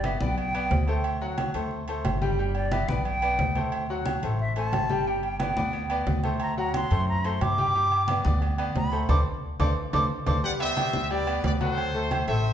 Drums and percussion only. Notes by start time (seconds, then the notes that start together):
0.04 high conga, low timbale, low agogo
0.21 high conga
0.38 high conga, low agogo
0.55 high conga, low agogo
0.71 high conga, low timbale
0.88 low agogo
1.04 high conga, low agogo
1.21 high conga
1.38 high conga, low timbale, low agogo
1.54 low agogo
1.71 high conga
1.88 high conga, low agogo
2.05 high conga, low timbale, low agogo
2.22 high conga
2.39 high conga
2.55 high conga, low agogo
2.72 high conga, low timbale, low agogo
2.89 high conga
3.05 high conga, low agogo
3.22 high conga, low agogo
3.39 high conga, low timbale
3.55 high conga, low agogo
3.72 high conga, low agogo
3.89 high conga
4.05 high conga, low timbale, low agogo
4.23 low agogo
4.39 high conga
4.56 high conga, low agogo
4.73 high conga, low timbale, low agogo
4.89 high conga
5.06 high conga
5.23 high conga, low agogo
5.40 high conga, low timbale, low agogo
5.57 high conga
5.73 high conga, low agogo
5.90 high conga, low agogo
6.07 high conga, low timbale
6.24 high conga, low agogo
6.40 high conga, low agogo
6.58 high conga
6.74 high conga, low timbale, low agogo
6.91 low agogo
7.08 high conga
7.24 high conga, low agogo
7.41 high conga, low timbale, low agogo
7.58 high conga
7.75 high conga
7.91 high conga, low agogo
8.08 high conga, low timbale, low agogo
8.25 high conga
8.42 high conga, low agogo
8.58 high conga, low agogo
8.75 high conga, low timbale
8.92 low agogo
9.09 high conga, high timbale
9.60 high conga, high timbale
9.93 high conga, high timbale
10.26 high conga, high timbale
10.44 high conga
10.60 high conga, low agogo
10.77 high conga, low timbale, low agogo
10.93 high conga
11.10 high conga, low agogo
11.27 high conga, low agogo
11.44 high conga, low timbale
11.61 high conga, low agogo
11.78 high conga, low agogo
11.95 high conga
12.11 high conga, low timbale, low agogo
12.28 low agogo
12.45 high conga